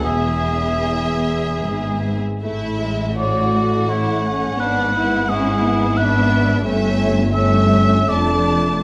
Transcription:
X:1
M:3/4
L:1/8
Q:1/4=82
K:A
V:1 name="Violin section"
e4- e z | e2 c f3- | f4 e2 | e2 e2 a2 |]
V:2 name="Cor anglais"
G4- G z | z2 d2 c2 | B2 G2 B2 | z2 e2 d2 |]
V:3 name="Violin section"
G4- G z | E2 F2 E C | D E E2 D2 | C2 C2 D2 |]
V:4 name="Viola section"
B,4- B, z | A, G, A,4 | B,2 C B, B,2 | A,2 A,2 A,2 |]
V:5 name="Cello section" clef=bass
E,,4 G,, z | A,,6 | G,,6 | =G,,4 =F,,2 |]
V:6 name="Double bass section" clef=bass
E,,,4 G,,, z | A,,,6 | G,,,6 | =G,,,4 =F,,,2 |]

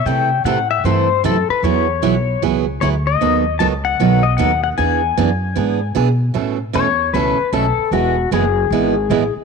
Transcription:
X:1
M:4/4
L:1/8
Q:"Swing" 1/4=152
K:A
V:1 name="Pedal steel guitar"
=g2 f e =c2 A B | c4 z2 c ^d- | ^d2 a f2 d f f | g6 z2 |
z2 c2 B2 A2 | F2 G4- G z |]
V:2 name="Steel-string acoustic guitar"
[=C,E,A,EA] z [C,E,A,EA] z [C,E,A,EA] z [C,E,A,EA] z | [E,F,B,EG] z [E,F,B,EG] z [E,F,B,EG] z [E,F,B,EG] z | [^D,F,B,^DA] z [D,F,B,DA] z [D,F,B,DA] z [D,F,B,DA] z | [E,B,DG] z [E,B,DG] z [E,B,DG] z [E,B,DG] z |
[B,,E,A,CA] z [B,,E,A,CA] z [B,,E,A,CA] z [B,,E,A,CA] z | [E,G,B,EG] z [E,G,B,EG] z [E,G,B,EG] z [E,G,B,EG] z |]
V:3 name="Upright bass" clef=bass
=C,2 A,,2 =G,,2 F,, z | E,,2 B,,,2 C,,2 D,,2 | ^D,,2 C,,2 B,,,2 D,,2 | E,,2 F,,2 G,,2 B,,2 |
A,,2 E,,2 C,, z B,,, z | E,,,2 F,,,2 G,,,2 A,,, z |]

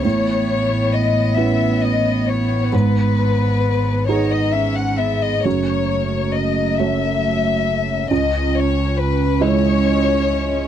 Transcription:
X:1
M:6/8
L:1/16
Q:3/8=45
K:F#dor
V:1 name="Violin section"
c4 d2 e2 d2 c2 | B6 c d e f e d | c4 d2 e6 | d2 c2 B2 c6 |]
V:2 name="Cello"
B,12- | B,6 D2 C2 B,2 | A,12 | C12 |]
V:3 name="Felt piano"
A,,6 [B,CE]6 | G,,6 [B,DG]6 | F,,6 [A,Fc]6 | C,,6 [G,Ed]6 |]
V:4 name="Double bass" clef=bass
A,,,12 | G,,,12 | F,,,12 | C,,12 |]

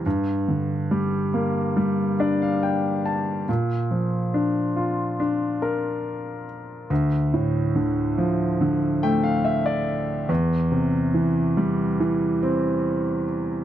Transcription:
X:1
M:4/4
L:1/16
Q:1/4=70
K:Dm
V:1 name="Grand piano"
z8 z2 d f g2 a2 | z16 | z8 z2 g f e d3 | z16 |]
V:2 name="Grand piano" clef=bass
G,,2 D,2 G,2 B,2 G,2 D6 | B,,2 F,2 D2 F2 D2 B6 | D,,2 A,,2 D,2 F,2 D,2 A,6 | E,,2 C,2 E,2 G,2 E,2 C6 |]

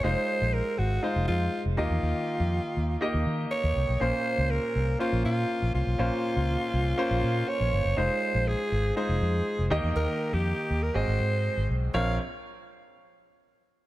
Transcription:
X:1
M:4/4
L:1/16
Q:1/4=121
K:Bbm
V:1 name="Alto saxophone"
c4 B2 G2 F2 F4 F2- | F8- F2 z2 d4 | c4 B4 F2 F4 F2- | F12 d4 |
c4 A4 A6 z2 | B3 =G4 B c6 z2 | f2 z12 z2 |]
V:2 name="Grand piano"
[A,EFc]6 z2 [A,EFc]6 [E,B,E=Ge]2- | [E,B,E=Ge]4 z4 [B,EGe]6 z2 | [B,,B,DFc]6 z2 [B,DFc]6 z2 | [B,,B,DFc]6 z2 [B,DFc]6 z2 |
[A,EFc]6 z2 [A,EFc]6 [E,B,E=Ge]2- | [E,B,E=Ge]4 z4 [A,,C_GAe]6 z2 | [B,,,CFBd]2 z12 z2 |]
V:3 name="Fingered electric bass" clef=bass
F,,, z2 B,,,2 z A,,,2 z F,,, F,,2 z F,,, E,, =E,, | E,, z2 F,,2 z E,,2 z E,, E,2 z E,, C,, _C,, | B,,, z2 D,,2 z C,,2 z B,,, B,,2 z B,,, C,, _C,, | B,,, z2 D,,2 z C,,2 z B,,, B,,2 z B,,, =G,,, _G,,, |
F,,, z2 B,,,2 z A,,,2 z F,,, F,,2 z F,,, E,, =E,, | E,, z2 F,,2 z E,,2 A,,, A,,, A,,3 A,,, _C,,2 | B,,,2 z12 z2 |]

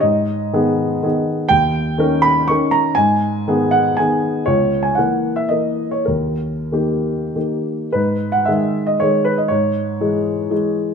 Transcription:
X:1
M:3/4
L:1/16
Q:1/4=118
K:G#m
V:1 name="Grand piano"
d8- d2 z2 | =g6 b2 c'2 a2 | g6 f2 g4 | c3 g f3 e d3 c |
A8- A2 z2 | B3 f e3 d c2 B d | c8- c2 z2 |]
V:2 name="Grand piano" clef=bass
G,,4 [D,B,G]4 [D,B,G]4 | D,,4 [D,CA]4 [D,CA]4 | G,,4 [D,B,G]4 [D,B,G]4 | C,,4 [E,A,A]4 [E,A,A]4 |
D,,4 [D,A,=G]4 [D,A,G]4 | G,,4 [D,G,G]4 [D,G,G]4 | G,,4 [E,G,G]4 [E,G,G]4 |]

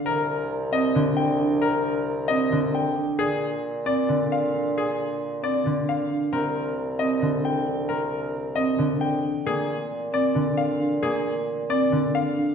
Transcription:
X:1
M:7/8
L:1/8
Q:1/4=134
K:Bbmix
V:1 name="Grand piano"
B z2 e z g z | B z2 e z g z | A z2 d z f z | A z2 d z f z |
B z2 e z g z | B z2 e z g z | A z2 d z f z | A z2 d z f z |]
V:2 name="Vibraphone"
z3 C z2 D | z3 C z2 D | z3 C z2 D | z3 C z2 D |
z3 C z2 D | z3 C z2 D | z3 C z2 D | z3 C z2 D |]
V:3 name="Harp" clef=bass
z4 D,3- | D,4 D,3 | z4 D,3- | D,4 D,3 |
C4 D,3 | C4 D,3 | B,4 D,3 | B,4 D,3 |]
V:4 name="Bassoon" clef=bass
C,,6- C,,- | C,,6- C,, | B,,6- B,,- | B,,6- B,, |
C,,6- C,,- | C,,6- C,, | B,,6- B,,- | B,,6- B,, |]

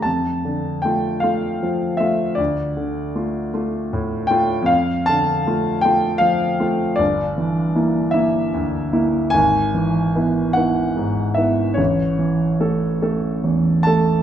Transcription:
X:1
M:12/8
L:1/8
Q:3/8=51
K:Dm
V:1 name="Grand piano"
a2 g f2 e d4 z g | f a2 g f2 d3 e2 z | ^g3 ^f2 e ^c3 z2 a |]
V:2 name="Grand piano"
F,, D, [A,F] [A,F] F, [A,F] D,, D, [A,F] [A,F] A,, [A,F] | F,, D, [A,F] [A,F] F, [A,F] G,,, E, [B,E] [B,E] D,, [B,E] | ^G,,, E, [=B,E] [B,E] ^G,, [B,E] A,,, E, [A,A] [A,A] E,, [A,A] |]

